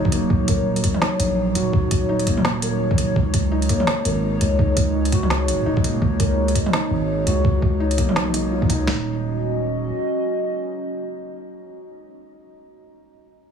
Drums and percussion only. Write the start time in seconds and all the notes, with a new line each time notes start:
0.05 kick, mid tom
0.12 closed hi-hat
0.30 kick
0.48 kick, closed hi-hat
0.76 closed hi-hat
0.84 kick, closed hi-hat
0.94 mid tom
1.02 snare
1.20 closed hi-hat
1.55 closed hi-hat
1.73 kick
1.91 kick, closed hi-hat
2.19 closed hi-hat
2.27 kick, closed hi-hat
2.37 mid tom
2.45 snare
2.62 closed hi-hat
2.91 kick, mid tom
2.98 closed hi-hat
3.16 kick
3.34 kick, closed hi-hat
3.62 closed hi-hat
3.69 kick, closed hi-hat
3.80 mid tom
3.87 snare
4.05 closed hi-hat
4.41 closed hi-hat
4.59 kick
4.77 kick, closed hi-hat
5.05 closed hi-hat
5.12 kick, closed hi-hat
5.23 mid tom
5.30 snare
5.48 closed hi-hat
5.77 kick, mid tom
5.84 closed hi-hat
6.02 kick
6.20 kick, closed hi-hat
6.48 closed hi-hat
6.55 kick, closed hi-hat
6.66 mid tom
6.73 snare
7.27 closed hi-hat
7.45 kick
7.62 kick
7.91 closed hi-hat
7.98 kick, closed hi-hat
8.09 mid tom
8.16 snare
8.27 mid tom
8.34 closed hi-hat
8.62 kick, mid tom
8.69 kick, closed hi-hat
8.87 snare